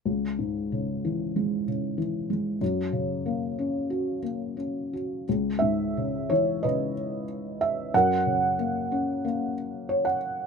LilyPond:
<<
  \new Staff \with { instrumentName = "Felt piano" } { \time 4/4 \key cis \minor \tempo 4 = 92 << { r1 | r1 | r8 e''4 cis''8 dis''4 r8 e''8 | fis''4 r2 cis''16 fis''8. | } \\ { r1 | r1 | r2 b'2 | ais'2 r2 | } >> }
  \new Staff \with { instrumentName = "Felt piano" } { \clef bass \time 4/4 \key cis \minor cis,8 gis,8 cis8 e8 gis8 cis8 e8 gis8 | fis,8 cis8 ais8 cis'8 fis'8 ais8 cis'8 fis'8 | cis,8 gis,8 cis8 e8 cis2 | fis,8 cis8 ais8 cis'8 ais2 | }
>>